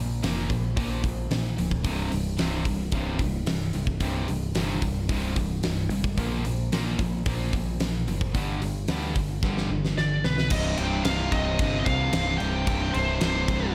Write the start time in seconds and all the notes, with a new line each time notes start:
Already playing: A#1 A#2 F3
0.22 F1 A#2 F3 A#3, snare, open hi-hat
0.49 A#1 A#2 F3, kick, open hi-hat
0.77 A#1 A#2 F3 A#3, kick, open hi-hat
1.04 A#1 A#2 F3, kick, open hi-hat
1.31 A#1 A#2 F3, snare, open hi-hat
1.56 D1 A#2 F3, open hi-hat
1.71 kick
1.83 C1 C2 G2 C3, kick, open hi-hat
2.11 C1 C2 G2, open hi-hat
2.37 C1 C2 G2 C3, snare, open hi-hat
2.65 C1 C2 G2, kick, open hi-hat
2.92 C1 C2 G2 C3, kick, open hi-hat
3.19 C1 C2 G2, kick, open hi-hat
3.46 C1 C2 G2, snare, open hi-hat
3.73 C1 C2 G2, open hi-hat
3.87 kick
4.00 C1 C2 G2 C3, kick, open hi-hat
4.28 C1 C2 G2, open hi-hat
4.55 G1 C2 G2 C3, snare, open hi-hat
4.82 C1 C2 G2, kick, open hi-hat
5.09 C1 C2 G2 C3, kick, open hi-hat
5.36 C1 C2 G2, kick, open hi-hat
5.63 C1 C2 G2, snare, open hi-hat
5.90 G#1 C2 G2, open hi-hat
6.04 kick
6.18 A#1 A#2 F3 A#3, kick, open hi-hat
6.45 A#1 A#2 F3, open hi-hat
6.72 A#1 A#2 F3 A#3, snare, open hi-hat
6.99 A#1 A#2 F3, kick, open hi-hat
7.26 A#1 A#2 F3 A#3, kick, open hi-hat
7.53 A#1 A#2 F3, kick, open hi-hat
7.80 A#1 A#2 F3, snare, open hi-hat
8.07 F#1 A#2 F3, open hi-hat
8.21 kick
8.34 G1 G2 D3 G3, kick, open hi-hat
8.62 G1 G2 D3, open hi-hat
8.88 D2 G2 D3 G3, snare, open hi-hat
9.15 G1 G2 D3, kick, open hi-hat
9.43 G1 G2 D3 G3, kick, snare
9.57 snare
9.70 G1 G2 D3
9.85 snare
9.97 G1 G2 D3 D5, snare
10.24 B1 G2 D3 B4, snare
10.38 snare
10.50 C1 C2 G2 C3 D#5, kick, crash
10.77 C1 C2 G2 C3 G5, crash
11.04 C1 C2 G2 C3 F5, snare, crash
11.32 C1 C2 G2 C3 D#5, kick, crash
11.59 G1 C2 G2 C3, kick, crash
11.79 D#5
11.85 C2 G2 C3 F5, kick, crash
12.13 C1 C2 G2 C3, snare, crash
12.38 C1 C2 G2 C3 G5, crash
12.67 C1 C2 G2 C3, kick, crash
12.94 C1 C2 G2 C3 C5, crash
13.21 C1 C2 G2 C3, snare, crash
13.48 C1 C2 G2 C3, kick, crash